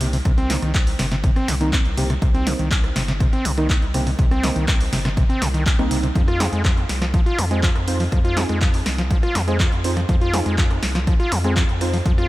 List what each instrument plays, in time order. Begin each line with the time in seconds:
Already playing: sub bass C2
0.01 acid bass C3, synth stab G3 A#3 C4 G4, open hi-hat
0.13 acid bass C3, open hi-hat
0.25 sub bass C2, acid bass C3, kick, cross-stick, closed hi-hat
0.38 acid bass C4, closed hi-hat
0.50 acid bass A#2, synth stab G3 A#3 C4 D#4, snare, open hi-hat
0.62 sub bass C2, acid bass D#3, cross-stick, closed hi-hat
0.74 finger snap, kick, clap, closed hi-hat
0.87 open hi-hat
0.99 sub bass G1, acid bass C3, cross-stick, snare, open hi-hat
1.12 acid bass C3, snare, closed hi-hat
1.24 acid bass C3, kick, closed hi-hat
1.36 acid bass C4, cross-stick, closed hi-hat
1.48 sub bass C2, acid bass A#2, finger snap, snare, open hi-hat
1.61 acid bass D#3, synth stab G3 A#3 C4 D#4, closed hi-hat
1.73 kick, cross-stick, clap, closed hi-hat
1.85 sub bass C2, closed hi-hat
1.97 acid bass C3, synth stab G3 A#3 C4 G4, open hi-hat
2.10 acid bass C3, cross-stick, closed hi-hat
2.22 sub bass C2, acid bass C3, kick, closed hi-hat
2.35 acid bass C4, closed hi-hat
2.47 acid bass A#2, synth stab G3 A#3 C4 D#4, cross-stick, snare, open hi-hat
2.59 sub bass C2, acid bass D#3, closed hi-hat
2.71 finger snap, kick, clap, closed hi-hat
2.84 cross-stick, closed hi-hat
2.96 sub bass G1, acid bass C3, snare, open hi-hat
3.08 acid bass C3, snare, closed hi-hat
3.20 acid bass C3, kick, cross-stick, closed hi-hat
3.33 acid bass C4, closed hi-hat
3.45 sub bass C2, acid bass A#2, finger snap, open hi-hat
3.57 acid bass D#3, synth stab G3 A#3 C4 D#4, cross-stick, closed hi-hat
3.70 kick, clap, closed hi-hat
3.82 sub bass C2, closed hi-hat
3.94 acid bass C3, synth stab G3 A#3 C4 G4, cross-stick, open hi-hat
4.07 acid bass C3, open hi-hat
4.19 sub bass C2, acid bass C3, kick, closed hi-hat
4.31 acid bass C4, cross-stick, closed hi-hat
4.43 acid bass A#2, synth stab G3 A#3 C4 D#4, snare, open hi-hat
4.56 sub bass C2, acid bass D#3, closed hi-hat
4.68 finger snap, kick, cross-stick, clap, closed hi-hat
4.81 open hi-hat
4.92 sub bass G1, acid bass C3, snare, open hi-hat
5.05 acid bass C3, cross-stick, snare, closed hi-hat
5.17 acid bass C3, kick, closed hi-hat
5.29 acid bass C4, closed hi-hat
5.42 sub bass C2, acid bass A#2, finger snap, cross-stick, snare, open hi-hat
5.54 acid bass D#3, closed hi-hat
5.66 kick, clap, closed hi-hat
5.79 sub bass C2, synth stab G3 A#3 C4 D#4, cross-stick, closed hi-hat
5.91 acid bass C3, synth stab G3 A#3 C4 D#4, open hi-hat
6.03 acid bass C3, closed hi-hat
6.15 sub bass F2, acid bass F3, kick, closed hi-hat
6.28 acid bass F4, cross-stick, closed hi-hat
6.40 acid bass D#3, synth stab C4 D#4 F4 G#4, snare, open hi-hat
6.52 sub bass F2, acid bass G#3, closed hi-hat
6.65 acid bass F3, finger snap, kick, cross-stick, clap, closed hi-hat
6.77 closed hi-hat
6.89 sub bass C2, snare, open hi-hat
7.02 acid bass F3, cross-stick, snare, closed hi-hat
7.14 acid bass F3, kick, closed hi-hat
7.26 acid bass F4, closed hi-hat
7.38 sub bass F2, acid bass D#3, finger snap, cross-stick, open hi-hat
7.51 acid bass G#3, synth stab C4 D#4 F4 G#4, closed hi-hat
7.63 acid bass F3, kick, clap, closed hi-hat
7.76 sub bass F2, cross-stick, closed hi-hat
7.87 synth stab C4 D#4 F4 C5, open hi-hat
8.00 acid bass F3, open hi-hat
8.12 sub bass F2, acid bass F3, kick, cross-stick, closed hi-hat
8.25 acid bass F4, closed hi-hat
8.37 acid bass D#3, synth stab C4 D#4 F4 G#4, snare, open hi-hat
8.49 sub bass F2, acid bass G#3, cross-stick, closed hi-hat
8.61 acid bass F3, finger snap, kick, clap, closed hi-hat
8.74 open hi-hat
8.86 sub bass C2, cross-stick, snare, open hi-hat
8.98 acid bass F3, snare, closed hi-hat
9.11 acid bass F3, kick, closed hi-hat
9.23 acid bass F4, cross-stick, closed hi-hat
9.35 sub bass F2, acid bass D#3, finger snap, snare, open hi-hat
9.48 acid bass G#3, synth stab C4 D#4 F4 G#4, closed hi-hat
9.60 acid bass F3, kick, cross-stick, clap, closed hi-hat
9.72 sub bass F2, closed hi-hat
9.84 synth stab C4 D#4 F4 C5, open hi-hat
9.97 acid bass F3, cross-stick, closed hi-hat
10.09 sub bass F2, acid bass F3, kick, closed hi-hat
10.21 acid bass F4, closed hi-hat
10.34 acid bass D#3, synth stab C4 D#4 F4 G#4, cross-stick, snare, open hi-hat
10.46 sub bass F2, acid bass G#3, closed hi-hat
10.58 acid bass F3, finger snap, kick, clap, closed hi-hat
10.71 cross-stick, closed hi-hat
10.83 sub bass C2, snare, open hi-hat
10.95 acid bass F3, snare, closed hi-hat
11.07 acid bass F3, kick, cross-stick, closed hi-hat
11.20 acid bass F4, closed hi-hat
11.32 sub bass F2, acid bass D#3, finger snap, open hi-hat
11.44 acid bass G#3, synth stab C4 D#4 F4 G#4, cross-stick, closed hi-hat
11.56 acid bass F3, kick, clap, closed hi-hat
11.69 sub bass F2, closed hi-hat
11.81 synth stab C4 D#4 F4 C5, cross-stick, open hi-hat
11.93 acid bass F3, open hi-hat
12.06 sub bass F2, acid bass F3, kick, closed hi-hat
12.18 acid bass F4, cross-stick, closed hi-hat